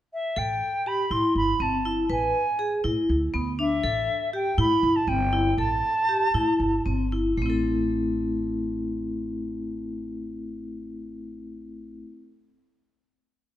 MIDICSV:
0, 0, Header, 1, 4, 480
1, 0, Start_track
1, 0, Key_signature, 0, "minor"
1, 0, Tempo, 497100
1, 356, Time_signature, 7, 3, 24, 8
1, 5879, Tempo, 521739
1, 12760, End_track
2, 0, Start_track
2, 0, Title_t, "Flute"
2, 0, Program_c, 0, 73
2, 126, Note_on_c, 0, 76, 63
2, 364, Note_on_c, 0, 79, 69
2, 378, Note_off_c, 0, 76, 0
2, 840, Note_on_c, 0, 83, 70
2, 855, Note_off_c, 0, 79, 0
2, 1077, Note_on_c, 0, 84, 72
2, 1091, Note_off_c, 0, 83, 0
2, 1314, Note_off_c, 0, 84, 0
2, 1321, Note_on_c, 0, 83, 74
2, 1562, Note_on_c, 0, 81, 64
2, 1576, Note_off_c, 0, 83, 0
2, 2030, Note_off_c, 0, 81, 0
2, 2036, Note_on_c, 0, 80, 70
2, 2712, Note_off_c, 0, 80, 0
2, 3475, Note_on_c, 0, 76, 69
2, 4149, Note_off_c, 0, 76, 0
2, 4201, Note_on_c, 0, 79, 77
2, 4416, Note_off_c, 0, 79, 0
2, 4439, Note_on_c, 0, 83, 76
2, 4786, Note_on_c, 0, 81, 66
2, 4801, Note_off_c, 0, 83, 0
2, 4906, Note_on_c, 0, 79, 75
2, 4920, Note_off_c, 0, 81, 0
2, 5382, Note_off_c, 0, 79, 0
2, 5388, Note_on_c, 0, 81, 78
2, 6550, Note_off_c, 0, 81, 0
2, 12760, End_track
3, 0, Start_track
3, 0, Title_t, "Vibraphone"
3, 0, Program_c, 1, 11
3, 351, Note_on_c, 1, 69, 65
3, 674, Note_off_c, 1, 69, 0
3, 834, Note_on_c, 1, 67, 55
3, 995, Note_off_c, 1, 67, 0
3, 1073, Note_on_c, 1, 64, 62
3, 1394, Note_off_c, 1, 64, 0
3, 1547, Note_on_c, 1, 60, 57
3, 1709, Note_off_c, 1, 60, 0
3, 1790, Note_on_c, 1, 64, 59
3, 1950, Note_off_c, 1, 64, 0
3, 2024, Note_on_c, 1, 71, 66
3, 2347, Note_off_c, 1, 71, 0
3, 2501, Note_on_c, 1, 68, 61
3, 2664, Note_off_c, 1, 68, 0
3, 2742, Note_on_c, 1, 64, 65
3, 3065, Note_off_c, 1, 64, 0
3, 3222, Note_on_c, 1, 59, 66
3, 3384, Note_off_c, 1, 59, 0
3, 3465, Note_on_c, 1, 62, 60
3, 3625, Note_off_c, 1, 62, 0
3, 3703, Note_on_c, 1, 69, 62
3, 4025, Note_off_c, 1, 69, 0
3, 4185, Note_on_c, 1, 67, 62
3, 4345, Note_off_c, 1, 67, 0
3, 4424, Note_on_c, 1, 64, 70
3, 4747, Note_off_c, 1, 64, 0
3, 4904, Note_on_c, 1, 60, 61
3, 5067, Note_off_c, 1, 60, 0
3, 5144, Note_on_c, 1, 64, 61
3, 5308, Note_off_c, 1, 64, 0
3, 5391, Note_on_c, 1, 69, 64
3, 5720, Note_off_c, 1, 69, 0
3, 5878, Note_on_c, 1, 67, 54
3, 6036, Note_off_c, 1, 67, 0
3, 6113, Note_on_c, 1, 64, 67
3, 6432, Note_off_c, 1, 64, 0
3, 6586, Note_on_c, 1, 60, 59
3, 6747, Note_off_c, 1, 60, 0
3, 6830, Note_on_c, 1, 64, 57
3, 6990, Note_off_c, 1, 64, 0
3, 7063, Note_on_c, 1, 57, 48
3, 7102, Note_on_c, 1, 60, 52
3, 7139, Note_on_c, 1, 64, 46
3, 7176, Note_on_c, 1, 69, 51
3, 11342, Note_off_c, 1, 57, 0
3, 11381, Note_off_c, 1, 60, 0
3, 11418, Note_off_c, 1, 64, 0
3, 11454, Note_off_c, 1, 69, 0
3, 12760, End_track
4, 0, Start_track
4, 0, Title_t, "Upright bass"
4, 0, Program_c, 2, 32
4, 353, Note_on_c, 2, 33, 66
4, 568, Note_off_c, 2, 33, 0
4, 1068, Note_on_c, 2, 45, 74
4, 1177, Note_off_c, 2, 45, 0
4, 1307, Note_on_c, 2, 31, 67
4, 1523, Note_off_c, 2, 31, 0
4, 1543, Note_on_c, 2, 31, 64
4, 1974, Note_off_c, 2, 31, 0
4, 2024, Note_on_c, 2, 33, 68
4, 2240, Note_off_c, 2, 33, 0
4, 2746, Note_on_c, 2, 45, 71
4, 2853, Note_off_c, 2, 45, 0
4, 2986, Note_on_c, 2, 38, 69
4, 3200, Note_off_c, 2, 38, 0
4, 3227, Note_on_c, 2, 38, 70
4, 3653, Note_off_c, 2, 38, 0
4, 3705, Note_on_c, 2, 33, 70
4, 3918, Note_off_c, 2, 33, 0
4, 4420, Note_on_c, 2, 45, 77
4, 4529, Note_off_c, 2, 45, 0
4, 4663, Note_on_c, 2, 31, 70
4, 4879, Note_off_c, 2, 31, 0
4, 4898, Note_on_c, 2, 31, 76
4, 5335, Note_off_c, 2, 31, 0
4, 5383, Note_on_c, 2, 33, 70
4, 5604, Note_off_c, 2, 33, 0
4, 6113, Note_on_c, 2, 45, 62
4, 6219, Note_off_c, 2, 45, 0
4, 6345, Note_on_c, 2, 31, 64
4, 6559, Note_off_c, 2, 31, 0
4, 6588, Note_on_c, 2, 31, 64
4, 7015, Note_off_c, 2, 31, 0
4, 7060, Note_on_c, 2, 33, 67
4, 11338, Note_off_c, 2, 33, 0
4, 12760, End_track
0, 0, End_of_file